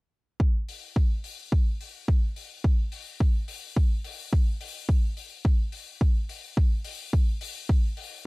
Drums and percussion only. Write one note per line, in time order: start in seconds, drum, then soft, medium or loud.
0.40 kick loud
0.69 open hi-hat medium
0.96 kick loud
1.24 open hi-hat loud
1.52 kick loud
1.81 open hi-hat medium
2.08 kick loud
2.36 open hi-hat medium
2.64 kick loud
2.92 open hi-hat loud
3.20 kick loud
3.48 open hi-hat loud
3.77 kick loud
4.04 open hi-hat loud
4.33 kick loud
4.61 open hi-hat loud
4.89 kick loud
5.17 open hi-hat loud
5.45 kick loud
5.72 open hi-hat loud
6.01 kick loud
6.29 open hi-hat loud
6.57 kick loud
6.84 open hi-hat loud
7.13 kick loud
7.41 open hi-hat loud
7.69 kick loud
7.97 open hi-hat loud